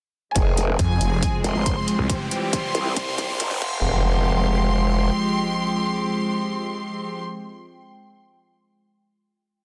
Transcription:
0.36 wobble bass F1, string section F3 G#3 C4 G#4, ambient pad F4, violin section G#4 G#5, kick, closed hi-hat, riser
0.45 ambient pad G#3
0.57 closed hi-hat
0.79 detuned saw bass F2, violin section G#4 G#5, kick, closed hi-hat
1.01 detuned saw bass F1, closed hi-hat
1.14 ambient pad G5
1.23 kick, closed hi-hat
1.44 wobble bass F1, violin section C5 C6, closed hi-hat
1.55 wobble bass G1
1.66 kick, closed hi-hat
1.88 closed hi-hat
1.99 detuned saw bass C2
2.09 string section E3 G3 C4 G4, ambient pad E4, violin section C5 C6, kick, closed hi-hat
2.31 closed hi-hat
2.45 ambient pad C5
2.53 violin section C5 C6, kick, closed hi-hat
2.75 wobble bass C2, closed hi-hat
2.96 detuned saw bass C2, kick, closed hi-hat
3.18 kick, closed hi-hat
3.40 wobble bass G1, kick, closed hi-hat
3.51 kick
3.62 wobble bass F1, string section F3 G#3 C4 G4, ambient pad F4, violin section C6, kick, crash, impact
3.68 ambient pad G#3
3.97 ambient pad G5

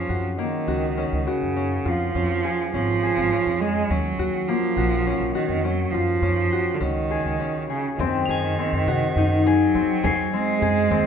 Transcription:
Already playing: cello F3, harp C#4 F4 G#4
0.09 upright bass F#2, harp F#4
0.39 cello D#3, harp A#3
0.67 upright bass C#2, harp F#4
0.98 harp C#4
1.12 upright bass C#2
1.27 cello C#3, harp F#4
1.41 upright bass F#2
1.56 harp C#4
1.85 upright bass F2, cello F3, harp F4
2.15 upright bass F2, harp C#4
2.44 harp G#4
2.73 upright bass G#1, cello F3, harp C#4
3.03 harp G#4
3.17 upright bass G#1
3.33 harp C#4
3.46 upright bass F2
3.61 cello G#3, harp G#4
3.90 upright bass D#2, cello F#3, harp C#4
4.19 upright bass D#2, harp F#4
4.48 cello F3, harp A#3
4.77 upright bass A#1, harp F#4
5.07 harp C#4
5.20 upright bass A#1
5.35 cello D#3, harp F#4
5.49 upright bass F2
5.63 cello F#3, harp C#4
5.91 upright bass F#2, cello F3, harp F4
6.22 upright bass F#2, harp C#4
6.52 harp F#4
6.75 cello D3
6.80 upright bass C#2, cello D#3, harp C#4
7.11 harp G#4
7.25 upright bass C#2
7.40 harp C#4
7.70 cello C#3, harp G#4
7.98 upright bass F#2, cello D#3, harp C4, frame drum
8.26 upright bass F#2, harp G#4, crotales F7
8.31 crotales G#7
8.59 harp C4
8.73 upright bass F#2
8.87 upright bass C3, harp F#4, frame drum
9.16 upright bass F#2, harp D#4
9.46 cello F#3, harp G#4, frame drum
9.75 upright bass F#3, harp C4
10.04 upright bass F#3, harp G#4, crotales C7, frame drum
10.33 cello G#3, harp C4
10.61 upright bass F#2, harp G#4
10.91 upright bass D#2, harp C4, frame drum

